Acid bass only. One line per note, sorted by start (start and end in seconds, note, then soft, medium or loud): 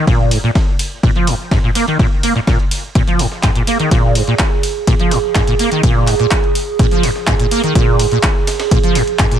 0.07 0.33 A#2 loud
0.31 0.38 G#2 medium
0.44 0.50 A#2 medium
1.03 1.10 A#2 loud
1.16 1.29 F3 medium
1.27 1.34 G#2 medium
1.51 1.58 G#2 medium
1.63 1.70 A#2 medium
1.75 1.85 A#3 medium
1.87 1.97 D#3 medium
1.99 2.06 A#2 loud
2.23 2.33 A#3 medium
2.35 2.39 A#2 medium
2.47 2.57 A#2 medium
2.95 3.02 A#2 loud
3.07 3.21 F3 medium
3.19 3.26 G#2 medium
3.43 3.50 G#2 medium
3.55 3.62 A#2 medium
3.67 3.77 A#3 medium
3.79 3.89 D#3 medium
3.91 4.17 A#2 loud
4.15 4.22 G#2 medium
4.27 4.34 A#2 medium
4.87 4.94 A#2 loud
4.99 5.13 F3 medium
5.11 5.18 G#2 medium
5.35 5.42 G#2 medium
5.48 5.54 A#2 medium
5.59 5.69 A#3 medium
5.72 5.81 D#3 medium
5.83 6.09 A#2 loud
6.07 6.14 G#2 medium
6.20 6.26 A#2 medium
6.79 6.86 A#2 loud
6.92 7.05 F3 medium
7.03 7.10 G#2 medium
7.27 7.34 G#2 medium
7.39 7.46 A#2 medium
7.51 7.61 A#3 medium
7.63 7.73 D#3 medium
7.75 8.01 A#2 loud
7.99 8.06 G#2 medium
8.11 8.18 A#2 medium
8.71 8.78 A#2 loud
8.84 8.97 F3 medium
8.95 9.02 G#2 medium
9.19 9.26 G#2 medium
9.32 9.38 A#2 medium